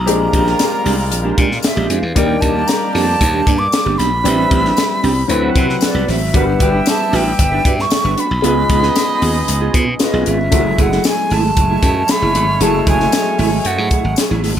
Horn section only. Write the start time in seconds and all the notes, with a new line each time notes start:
0.07 G3 A#3 F4 A#4
2.16 A#3 D4 G4 D5
4.25 C4 E4 B4 E5
5.30 C4 F#4 B4 F#5
6.35 B3 E4 G4 E5
8.44 B3 D#4 G#4 D#5
11.57 G#3 A3 C#4 C#5